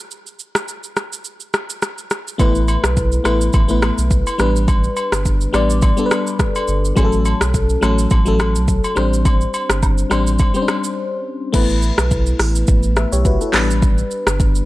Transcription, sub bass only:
2.40 2.77 A1 loud
2.84 3.19 B1 medium
3.25 3.49 A1 medium
3.54 3.91 A1 medium
3.98 4.22 B1 medium
4.39 4.88 A1 loud
5.12 5.47 G1 medium
5.54 5.91 A1 loud
6.68 6.92 G1 loud
6.97 7.34 A1 loud
7.41 7.76 B1 medium
7.82 8.07 A1 loud
8.11 8.57 A1 loud
8.55 8.79 B1 medium
8.97 9.45 A1 loud
9.70 10.05 G1 medium
10.11 10.48 A1 medium
11.54 11.91 A1 loud
11.98 12.33 B1 medium
12.40 12.64 A1 loud
12.68 13.06 A1 loud
13.12 13.37 B1 medium
13.54 14.02 A1 loud
14.27 14.62 G1 medium

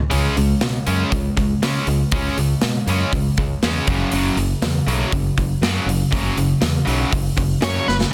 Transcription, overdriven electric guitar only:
0.11 0.34 C#3 medium
0.11 0.34 G#3 medium
0.11 0.35 C#4 medium
0.37 0.59 C#3 medium
0.37 0.59 G#3 medium
0.62 0.84 C#3 medium
0.62 0.85 G#3 medium
0.87 1.09 C#3 medium
0.87 1.10 G#3 medium
0.87 1.10 C#4 medium
1.11 1.34 C#3 medium
1.11 1.34 G#3 medium
1.37 1.59 C#3 medium
1.37 1.60 G#3 medium
1.62 1.86 C#3 medium
1.62 1.86 G#3 loud
1.62 1.86 C#4 medium
1.88 2.10 C#3 medium
1.88 2.10 G#3 medium
2.13 2.36 C#3 medium
2.13 2.37 G#3 medium
2.13 2.37 C#4 medium
2.38 2.60 C#3 medium
2.38 2.60 G#3 medium
2.63 2.85 C#3 medium
2.63 2.86 G#3 medium
2.89 3.12 C#3 medium
2.89 3.12 G#3 medium
2.89 3.12 C#4 medium
3.13 3.36 C#3 medium
3.13 3.36 G#3 medium
3.38 3.60 C#3 medium
3.38 3.61 G#3 medium
3.64 3.87 C#3 medium
3.64 3.87 G#3 medium
3.64 3.87 C#4 medium
3.88 4.12 F#2 medium
3.88 4.12 C#3 medium
3.88 4.12 F#3 medium
4.13 4.36 F#2 medium
4.13 4.37 C#3 medium
4.13 4.37 F#3 medium
4.38 4.60 F#2 medium
4.38 4.60 C#3 medium
4.62 4.85 F#2 medium
4.62 4.85 C#3 medium
4.86 5.11 F#2 medium
4.86 5.11 C#3 medium
4.86 5.12 F#3 loud
5.12 5.35 F#2 medium
5.12 5.35 C#3 medium
5.38 5.60 F#2 medium
5.38 5.61 C#3 medium
5.62 5.86 F#2 medium
5.62 5.86 C#3 medium
5.62 5.87 F#3 medium
5.87 6.10 F#2 medium
5.87 6.10 C#3 medium
6.11 6.35 F#2 medium
6.11 6.36 C#3 medium
6.11 6.36 F#3 medium
6.36 6.60 F#2 medium
6.36 6.60 C#3 medium
6.61 6.84 F#2 medium
6.61 6.84 C#3 medium
6.85 7.10 F#2 medium
6.85 7.10 C#3 loud
6.85 7.10 F#3 loud
7.11 7.35 F#2 medium
7.11 7.35 C#3 medium
7.37 7.60 F#2 medium
7.37 7.60 C#3 medium
7.61 7.85 F#2 medium
7.61 7.86 C#3 medium
7.61 7.86 F#3 loud
7.86 8.10 F#2 medium
7.86 8.10 C#3 medium

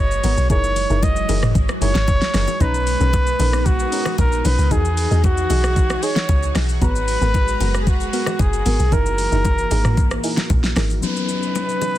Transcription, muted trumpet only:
0.00 0.50 C#5 loud
0.50 1.05 C#5 loud
1.03 1.55 D#5 loud
1.82 2.63 C#5 loud
2.61 3.68 B4 loud
3.66 4.19 F#4 loud
4.19 4.47 A#4 loud
4.46 4.73 B4 loud
4.72 5.24 G#4 loud
5.24 6.05 F#4 loud
6.03 6.56 C#5 loud
6.83 7.77 B4 loud
7.81 7.89 G#4 medium
7.88 8.42 F#4 loud
8.40 8.94 G#4 loud
8.93 10.50 A#4 loud
11.03 11.98 B4 loud

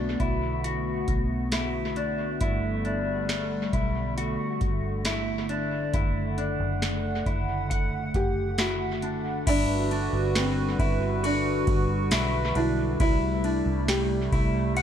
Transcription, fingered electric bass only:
0.00 0.17 B1 medium
0.20 1.04 B1 medium
1.08 2.37 B1 medium
2.41 3.69 G1 medium
3.73 4.36 B1 medium
4.61 5.90 G1 medium
5.94 6.57 F#1 medium
6.60 7.23 F#1 medium
7.26 8.10 F#1 medium
8.14 9.43 F#1 medium
9.47 10.10 G1 medium
10.13 10.76 G1 medium
10.79 11.63 G1 medium
11.67 12.09 G1 loud
12.12 12.54 B1 medium
12.56 12.98 B1 medium
13.00 13.63 C2 medium
13.66 14.29 C2 medium
14.32 14.82 C2 medium

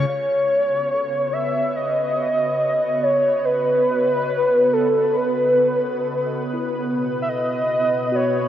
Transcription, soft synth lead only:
0.09 1.34 C#5 loud
1.33 1.77 E5 loud
1.76 3.05 D#5 loud
3.03 3.46 C#5 loud
3.45 4.74 B4 loud
4.73 5.18 A4 loud
5.16 6.43 B4 medium
7.22 7.30 E5 medium
7.28 8.17 D#5 loud
8.15 8.48 C#5 medium

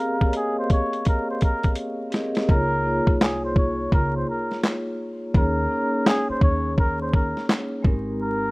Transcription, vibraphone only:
0.00 2.10 C4 medium
0.00 0.22 G4 medium
0.00 0.23 G#4 medium
0.00 0.24 A#4 medium
0.00 2.51 F5 medium
0.21 1.20 A#3 medium
0.21 1.21 G4 medium
0.21 1.21 G#4 medium
0.21 1.22 A#4 medium
0.21 0.28 C#5 medium
0.31 1.25 D#5 medium
2.10 2.40 C4 medium
2.10 2.40 G4 medium
2.10 2.41 G#4 medium
2.10 2.41 A#4 medium
2.10 2.42 D#5 medium
2.49 2.77 A#3 medium
2.49 2.77 D#4 medium
2.49 2.78 F4 medium
2.49 2.78 G#4 medium
2.49 2.79 C#5 medium
2.84 3.87 A#3 medium
2.84 3.87 D#4 medium
2.84 3.88 F4 medium
2.84 3.88 G#4 medium
2.84 3.89 C#5 medium
5.34 5.62 A#3 medium
5.34 5.63 C#4 medium
5.34 5.63 D#4 medium
5.34 5.63 G#4 medium
5.34 5.64 C#5 medium
5.69 6.72 A#3 medium
5.69 6.73 C#4 medium
5.69 6.73 D#4 medium
5.69 6.74 G#4 medium
5.73 6.74 C#5 medium
7.82 8.44 G#3 loud
7.82 8.45 C4 medium
7.82 8.45 D#4 medium
7.82 8.46 G4 medium
7.82 8.46 A#4 loud

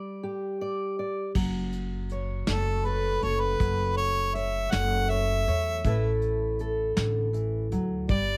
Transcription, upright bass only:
1.35 2.44 F#1 medium
2.48 3.19 F#1 medium
3.22 3.58 F#1 medium
3.60 4.68 F#1 medium
4.72 5.43 F#1 medium
5.48 5.83 E2 medium
5.84 6.93 A1 medium
6.97 7.68 A1 medium
7.72 8.07 D2 medium
8.09 8.37 G1 medium

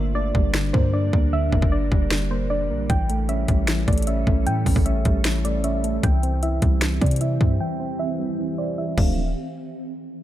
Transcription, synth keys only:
0.00 0.53 D3 medium
0.00 0.73 A#3 medium
0.15 0.92 D4 medium
0.35 1.33 G3 medium
0.54 1.32 D3 medium
0.74 1.12 A#3 medium
0.94 1.71 D4 medium
1.13 1.51 A#3 medium
1.33 2.10 D3 medium
1.52 2.30 A#3 medium
1.72 2.49 D4 medium
1.92 2.90 G3 medium
2.11 2.90 D3 medium
2.31 2.69 A#3 medium
2.51 2.90 D4 medium
2.70 2.90 A#3 medium
2.90 3.67 E3 loud
3.09 3.86 A3 medium
3.29 4.06 C#4 medium
3.48 4.47 G3 medium
3.68 4.45 E3 loud
3.88 4.26 A3 medium
4.08 4.85 C#4 medium
4.27 4.65 A3 medium
4.46 5.24 E3 medium
4.66 5.43 A3 medium
4.86 5.63 C#4 medium
5.06 6.04 G3 medium
5.25 6.02 E3 medium
5.45 5.83 A3 medium
5.64 6.04 C#4 medium
5.84 6.04 A3 medium
6.04 6.81 E3 medium
6.23 7.00 C4 medium
6.43 7.20 E4 medium
6.62 7.60 G3 medium
6.82 7.59 E3 medium
7.01 7.40 C4 medium
7.21 7.98 E4 medium
7.41 7.79 C4 medium
7.60 8.38 E3 loud
7.80 8.57 C4 medium
7.99 8.77 E4 medium
8.19 8.98 G3 medium
8.39 8.98 E3 medium
8.58 8.96 C4 medium
8.78 8.98 E4 medium
8.98 9.16 F3 medium
8.98 9.16 A3 medium
8.98 9.16 C4 medium
8.98 9.16 D4 loud

